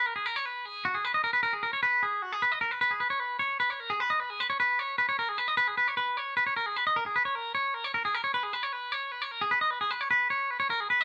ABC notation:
X:1
M:7/8
L:1/16
Q:1/4=152
K:G#m
V:1 name="Clean electric guitar"
A G A c B2 G2 F G B d A B | A G A c B2 G2 F G B d A B | B G B c B2 c2 B c A G B d | B G B c B2 c2 B c A G B d |
B G B c B2 c2 B c A G B d | A G B c A2 c2 A c A G A c | B G B c B2 c2 B c A G B d | B G B c B2 c2 B c A G B d |]